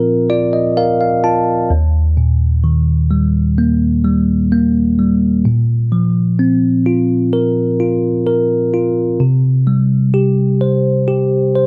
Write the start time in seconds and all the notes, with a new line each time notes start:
Already playing: A#2 F3 C4 F4 A#4
0.30 F4 D5
0.53 D#5
0.77 A#4 F5
1.01 F5
1.24 F4 A5
1.70 D#2
2.17 A#2
2.64 D#3
3.11 G3
3.58 A#3
4.05 G3
4.52 A#3
4.99 G3
5.45 A#2
5.92 F3
6.39 C4
6.86 F4
7.33 A#4
7.80 F4
8.27 A#4
8.74 F4
9.20 C3
9.67 G3
10.14 G4
10.61 C5
11.08 G4
11.55 C5